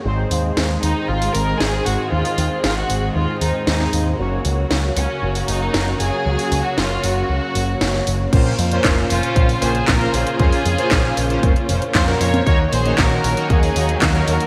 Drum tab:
CC |----------------|----------------|----------------|----------------|
HH |--o---o--oo---o-|-oo---o---o---o-|--o---o--oo---o-|-oo---o---o---o-|
CP |----------------|----------------|----------------|----------------|
SD |----o-------o---|----o-------oo--|----o-------o---|----o-------oo--|
CG |----------------|----------------|----------------|----------------|
BD |----------------|----------------|----------------|----------------|

CC |x---------------|----------------|----------------|
HH |x-oxx-oxxooxxxox|xooxx-oxxxoxxxox|x-oxx-oxxooxxxox|
CP |----x-------x---|----x-------x---|----x-------x---|
SD |----o-------o---|----o-------oo--|----o-------o---|
CG |------------o---|---------------o|------------o---|
BD |o---o---o---o---|o---o---o---o---|o---o---o---o---|